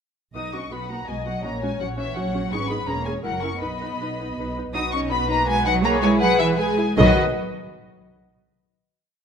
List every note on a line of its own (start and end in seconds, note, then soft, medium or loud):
0.35 0.68 B1 soft
0.35 0.42 B3 soft
0.35 0.53 D#4 medium
0.35 0.43 F#4 soft
0.35 0.70 D#5 soft
0.35 0.53 D#6 medium
0.53 0.61 B3 soft
0.53 0.73 C#4 soft
0.53 0.61 F#4 soft
0.53 0.73 C#6 medium
0.72 1.05 B1 soft
0.72 0.79 B3 soft
0.72 0.90 B3 soft
0.72 0.79 F#4 soft
0.72 1.08 F#5 soft
0.72 0.91 B5 medium
0.90 0.98 A#3 soft
0.90 0.98 B3 soft
0.90 0.97 F#4 soft
0.90 1.09 A#5 medium
1.08 1.41 B1 soft
1.08 1.16 G#3 medium
1.08 1.15 B3 soft
1.08 1.15 F#4 soft
1.08 1.44 D#5 soft
1.08 1.27 G#5 medium
1.26 1.45 F#3 medium
1.26 1.33 B3 soft
1.26 1.33 F#4 soft
1.26 1.45 F#5 medium
1.43 1.77 A#1 medium
1.43 1.63 A#3 medium
1.43 1.51 C#4 soft
1.43 1.51 F#4 soft
1.43 2.53 C#5 medium
1.43 1.63 A#5 medium
1.62 1.71 G#3 medium
1.62 1.70 C#4 soft
1.62 1.70 F#4 soft
1.62 1.81 G#5 medium
1.80 2.13 A#1 medium
1.80 1.89 F#3 soft
1.80 1.88 C#4 soft
1.80 1.88 F#4 soft
1.80 1.88 F#5 medium
1.98 2.17 E3 medium
1.98 2.05 C#4 medium
1.98 2.05 F#4 soft
1.98 2.17 E5 medium
2.16 2.48 A#1 medium
2.16 2.53 F#3 medium
2.16 2.23 C#4 medium
2.16 2.23 F#4 medium
2.16 2.53 F#5 medium
2.34 2.41 C#4 soft
2.34 2.41 F#4 soft
2.52 2.84 G#1 medium
2.52 2.71 C#4 medium
2.52 2.60 D#4 soft
2.52 2.59 G#4 soft
2.52 2.88 B4 medium
2.52 2.71 C#6 medium
2.70 2.78 B3 medium
2.70 2.78 D#4 medium
2.70 2.77 G#4 medium
2.70 2.88 B5 medium
2.88 3.21 E1 medium
2.88 3.07 A#3 medium
2.88 2.95 C#4 soft
2.88 2.95 G#4 soft
2.88 3.25 C#5 medium
2.88 3.07 A#5 medium
3.06 3.25 G#3 medium
3.06 3.13 C#4 soft
3.06 3.14 G#4 soft
3.06 3.13 G#5 medium
3.24 3.57 F#1 medium
3.24 3.44 F#3 medium
3.24 3.31 E4 soft
3.24 3.32 A#4 medium
3.24 3.61 A#4 soft
3.24 3.43 F#5 medium
3.43 3.62 C#4 medium
3.43 3.51 E4 soft
3.43 3.50 A#4 soft
3.43 3.62 C#6 medium
3.61 3.95 B1 medium
3.61 4.54 B3 medium
3.61 3.69 D#4 soft
3.61 3.70 B4 soft
3.61 4.54 D#5 medium
3.61 4.54 B5 medium
3.82 3.89 D#4 soft
3.82 3.89 B4 soft
3.99 4.32 B1 medium
3.99 4.08 D#4 soft
3.99 4.08 B4 soft
4.20 4.27 D#4 soft
4.20 4.27 B4 soft
4.37 4.70 B1 medium
4.37 4.46 D#4 soft
4.37 4.46 B4 soft
4.57 4.64 D#4 soft
4.57 4.64 B4 soft
4.74 6.74 B1 medium
4.74 4.82 D#4 medium
4.74 4.92 F#4 medium
4.74 4.92 B4 medium
4.74 4.92 D#6 medium
4.93 5.11 C#4 medium
4.93 5.12 D#4 medium
4.93 5.12 D#5 medium
4.93 5.00 C#6 medium
5.11 5.30 B3 medium
5.11 5.30 F#4 medium
5.11 5.80 B4 medium
5.11 5.30 B4 medium
5.11 5.29 B5 loud
5.29 5.47 A#3 medium
5.29 5.48 D#4 medium
5.29 5.47 D#5 medium
5.29 5.47 A#5 loud
5.47 5.66 G#3 medium
5.47 5.65 F#4 medium
5.47 5.65 B4 medium
5.47 5.66 G#5 loud
5.66 5.84 F#3 loud
5.66 5.85 D#4 medium
5.66 5.84 D#5 medium
5.66 5.74 F#5 loud
5.84 6.03 A#3 loud
5.84 6.01 G#4 medium
5.84 6.01 B4 medium
5.84 6.20 C#5 loud
5.84 5.92 A#5 loud
6.02 6.21 G#3 medium
6.02 6.21 E4 medium
6.02 6.20 G#4 medium
6.02 6.10 G#5 loud
6.21 6.29 F#3 loud
6.21 6.39 G#4 medium
6.21 6.58 B4 loud
6.21 6.40 B4 medium
6.21 6.39 F#5 loud
6.39 6.58 E3 medium
6.39 6.59 E4 medium
6.39 6.58 G#4 medium
6.39 6.47 E5 loud
6.58 6.97 G#3 medium
6.58 6.78 G#4 medium
6.58 6.77 G#4 medium
6.58 6.77 B4 medium
6.58 6.97 G#5 loud
6.79 6.98 E4 medium
6.79 6.98 G#4 medium
6.97 7.19 B1 loud
6.97 7.19 D#3 loud
6.97 7.19 F#3 loud
6.97 7.19 B3 medium
6.97 7.19 F#4 loud
6.97 7.19 B4 loud
6.97 7.19 D#5 loud